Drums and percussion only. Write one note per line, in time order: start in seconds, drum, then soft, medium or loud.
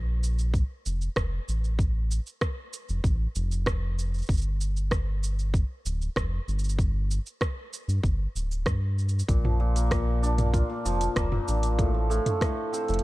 0.23 shaker medium
0.39 shaker soft
0.54 kick medium
0.54 shaker soft
0.86 shaker medium
1.01 shaker soft
1.16 kick loud
1.16 cross-stick loud
1.16 shaker soft
1.48 shaker medium
1.64 shaker soft
1.79 kick medium
1.79 shaker soft
2.11 shaker medium
2.26 shaker soft
2.41 kick loud
2.41 cross-stick loud
2.41 shaker soft
2.73 shaker medium
2.89 shaker soft
3.04 kick loud
3.04 shaker soft
3.35 shaker medium
3.52 shaker soft
3.66 kick loud
3.66 cross-stick loud
3.66 shaker soft
3.99 shaker medium
4.14 shaker soft
4.18 shaker soft
4.22 shaker soft
4.26 kick loud
4.26 shaker soft
4.30 shaker soft
4.34 shaker soft
4.37 shaker soft
4.41 shaker soft
4.61 shaker medium
4.77 shaker soft
4.91 kick medium
4.91 cross-stick medium
4.91 shaker soft
5.23 shaker medium
5.39 shaker soft
5.54 kick loud
5.54 shaker soft
5.86 shaker medium
6.02 shaker soft
6.16 kick medium
6.16 cross-stick loud
6.16 shaker soft
6.49 shaker soft
6.59 shaker soft
6.64 shaker soft
6.69 shaker medium
6.79 kick medium
6.79 shaker soft
7.11 shaker medium
7.26 shaker soft
7.41 kick medium
7.41 cross-stick loud
7.41 shaker soft
7.73 shaker medium
7.89 shaker soft
8.03 kick loud
8.03 shaker soft
8.36 shaker medium
8.51 shaker soft
8.66 kick loud
8.66 cross-stick medium
8.66 shaker soft
8.99 shaker soft
9.09 shaker soft
9.19 shaker medium
9.28 kick medium
9.28 closed hi-hat soft
9.28 shaker soft
9.45 mid tom medium
9.76 closed hi-hat soft
9.76 shaker medium
9.91 kick loud
9.91 cross-stick medium
9.91 closed hi-hat soft
9.91 shaker soft
10.23 shaker medium
10.38 closed hi-hat soft
10.38 mid tom medium
10.38 shaker soft
10.54 kick medium
10.54 closed hi-hat soft
10.54 shaker soft
10.86 shaker medium
11.01 closed hi-hat soft
11.01 shaker soft
11.16 kick loud
11.16 cross-stick medium
11.16 closed hi-hat soft
11.16 shaker soft
11.32 mid tom medium
11.48 shaker medium
11.63 closed hi-hat medium
11.63 shaker soft
11.79 kick medium
11.79 closed hi-hat soft
11.79 shaker soft
12.11 shaker medium
12.26 closed hi-hat medium
12.26 mid tom medium
12.26 shaker soft
12.41 kick medium
12.41 cross-stick medium
12.41 closed hi-hat soft
12.41 shaker soft
12.74 shaker medium
12.88 closed hi-hat soft
12.88 shaker soft
12.94 closed hi-hat soft
12.99 closed hi-hat soft